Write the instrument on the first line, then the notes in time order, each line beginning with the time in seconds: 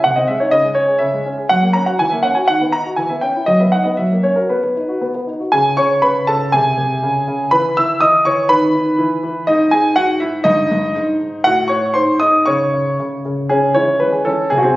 grand piano
0.04 C3 F#5
0.16 C4 D#5
0.28 G#3 E5
0.40 D#4 C#5
0.51 C#3 D#5
0.65 G#3
0.75 C#4 C#5
0.88 G#4
0.98 C#3 E5
1.13 G#3
1.26 C#4
1.38 G#4
1.49 F#3 F#5
1.63 A#3
1.73 C#4 A#5
1.86 F#4 F#5
1.99 E3 G#5
2.11 A#3 E5
2.23 C#4 F#5
2.35 F#4 G#5
2.48 D#3 F#5
2.61 B3
2.72 D#4 A#5
2.86 F#4
2.96 E3 G#5
3.09 B3 E5
3.21 C#4 G5
3.36 E4
3.46 F#3 D#5
3.59 B3 E5
3.72 D#4 F#5
3.84 B3 D#5
3.97 F#3 E5
4.12 A#3
4.23 C#4 C#5
4.36 F#4 A#4
4.49 B3 B4
4.63 B3
4.76 D#4
4.88 F#4
5.01 B3
5.15 B3
5.27 D#4
5.40 F#4
5.52 C#3 G#4 G#5
5.77 C#3 C#5 C#6
6.02 C#3 B4 B5
6.27 C#3 A4 A5
6.52 C3 G#4 G#5
6.78 C3
7.03 C#3
7.28 C#3
7.51 E3 B4 B5
7.77 E3 E5 E6
8.01 E3 D#5 D#6
8.25 E3 C#5 C#6
8.49 D#3 B4 B5
8.75 D#3
8.98 E3
9.23 E3
9.47 G#2 D#4 D#5
9.71 G#2 G#4 G#5
9.96 G#2 F#4 F#5
10.20 G#2 E4 E5
10.44 G2 D#4 D#5
10.71 G2
10.95 G#2
11.20 G#2
11.44 A2 F#4 F#5
11.68 A2 C#5 C#6
11.94 G#2 C5 C6
12.20 G#2 D#5 D#6
12.46 C#3 C#5 C#6
12.73 C#3
12.99 C#3
13.25 C#3
13.49 C#3 C#4 G#4
13.74 E3 G#3 C#4 E4 C#5
14.00 E3 G#3 C#4 B4
14.12 G#4
14.25 E3 G#3 C#4 A4
14.50 C3 G#4
14.58 F#4
14.63 C4 G#4